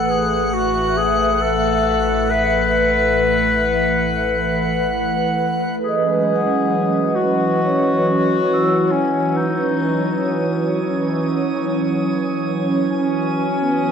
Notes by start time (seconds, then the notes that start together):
Already playing: A1 E3 A3 A4 B4 E5 F#5 F#6
0.10 G#4
0.53 F#4
0.97 G#4
1.41 A4
2.31 B4
5.81 F#3 G#4 C#5 D#6
5.88 C#4 D#5
6.07 G#3
6.35 F#5
7.15 F#4
7.65 C#5
8.53 E6
8.91 C#4
9.36 D#4
12.89 C#4
13.61 B3
13.71 E4